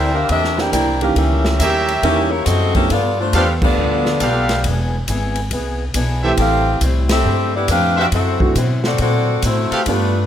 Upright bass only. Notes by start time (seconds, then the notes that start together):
Already playing: D2
0.29 E2
0.73 C2
1.16 C#2
1.59 D#2
2.02 E2
2.46 F#2
2.90 G2
3.33 E2
3.77 D2
4.20 B1
4.64 E1
5.07 G#1
5.51 C2
5.94 B1
6.38 A1
6.81 C2
7.25 G2
7.68 F2
8.12 F#2
8.55 B2
8.99 A#2
9.43 A2
9.71 muted upright bass stroke
9.86 G2